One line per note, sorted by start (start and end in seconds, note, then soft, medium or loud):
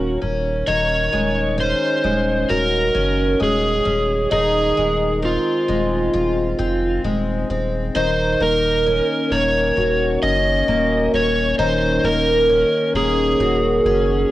0.00 0.17 D#1 medium
0.00 0.65 D#3 medium
0.00 0.77 A#3 soft
0.00 0.21 C#4 medium
0.00 0.19 F#4 medium
0.00 1.15 F#4 medium
0.22 0.62 D#1 medium
0.22 1.57 C#4 medium
0.67 1.08 D#1 loud
0.67 4.30 D#3 medium
0.67 1.60 C#5 loud
1.12 1.73 D#1 medium
1.12 2.03 G#3 medium
1.58 2.93 C#4 medium
1.58 2.53 C5 medium
2.04 2.44 D#1 medium
2.04 3.40 G#3 medium
2.49 2.90 D#1 medium
2.49 4.40 F#4 medium
2.49 3.43 A#4 medium
2.95 3.35 F#1 medium
2.95 3.84 C#4 medium
3.40 3.81 D#1 medium
3.40 4.77 G#3 medium
3.40 4.32 G#4 medium
3.85 4.26 D#1 medium
3.85 4.40 C#4 medium
4.31 4.72 D#1 loud
4.31 7.94 D#3 medium
4.31 5.19 G#4 medium
4.77 5.37 D#1 medium
4.77 5.67 G#3 medium
5.23 6.57 C4 medium
5.23 7.01 F4 medium
5.68 6.08 D#1 medium
5.68 7.03 G#3 medium
6.13 6.54 D#1 loud
6.13 8.04 F4 medium
6.59 6.99 F1 medium
6.59 7.49 C4 medium
7.04 7.44 D#1 medium
7.04 8.04 G#3 medium
7.50 7.89 D#1 medium
7.50 8.04 C4 medium
7.95 8.35 D#1 loud
7.95 11.57 D#3 medium
7.95 8.42 C5 medium
8.40 9.00 D#1 loud
8.40 9.30 A#3 medium
8.40 9.35 A#4 medium
8.86 10.22 C#4 medium
9.31 9.71 D#1 medium
9.31 10.67 A#3 medium
9.31 10.22 C#5 medium
9.77 10.17 D#1 medium
9.77 13.39 F#4 medium
10.22 10.62 F#1 medium
10.22 11.13 C#4 medium
10.22 11.15 D#5 medium
10.68 11.08 D#1 medium
10.68 12.03 A#3 medium
11.13 11.53 D#1 medium
11.13 12.49 C#4 medium
11.13 11.58 C#5 medium
11.58 11.98 D#1 loud
11.58 14.31 D#3 medium
11.58 12.05 C5 medium
12.03 12.63 D#1 loud
12.03 12.94 A#3 medium
12.03 12.96 A#4 medium
12.49 13.85 C#4 medium
12.94 13.34 D#1 medium
12.94 14.30 A#3 medium
12.94 14.31 G#4 medium
13.39 13.80 D#1 loud
13.39 14.31 F#4 medium
13.84 14.25 F#1 medium
13.84 14.31 C#4 medium